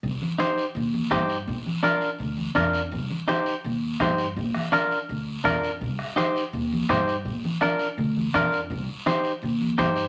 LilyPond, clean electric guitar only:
\new Staff \with { instrumentName = "Clean electric guitar" } { \time 4/4 \key c \minor \tempo 4 = 166 r4 <ees' g' c''>8 r4. <ees' g' c''>8 r8 | r4 <d' f' bes'>8 r4. <d' f' bes'>8 r8 | r4 <ees' g' c''>8 r4. <ees' g' c''>8 r8 | r4 <d' f' bes'>8 r4. <d' f' bes'>8 r8 |
r4 <ees' g' c''>8 r4. <ees' g' c''>8 r8 | r4 <d' f' bes'>8 r4. <d' f' bes'>8 r8 | r4 <ees' g' c''>8 r4. <ees' g' c''>8 r8 | }